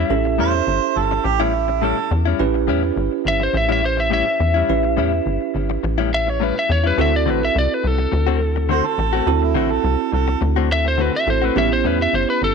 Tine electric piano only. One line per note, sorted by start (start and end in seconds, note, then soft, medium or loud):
0.10 2.36 C#4 medium
0.10 2.36 E4 medium
0.10 2.36 G4 medium
0.10 2.36 A4 medium
2.40 4.65 C#4 medium
2.40 4.65 E4 medium
2.40 4.65 G4 medium
2.40 4.65 B4 loud
4.69 6.94 C#4 medium
4.69 6.94 E4 medium
4.69 6.94 G4 medium
4.69 6.94 B4 medium
6.98 9.23 C4 medium
6.98 9.23 E4 medium
6.98 9.23 F#4 medium
6.98 9.24 A4 medium
9.27 11.23 C4 medium
9.27 11.24 E4 medium
9.27 11.24 F#4 medium
9.27 11.24 A4 medium
11.27 11.56 C4 medium
11.27 11.55 E4 soft
11.27 11.56 F#4 soft
11.27 11.56 A4 medium
11.56 12.54 B3 medium
11.56 12.54 C#4 medium
11.56 12.54 E4 medium
11.56 12.54 G4 medium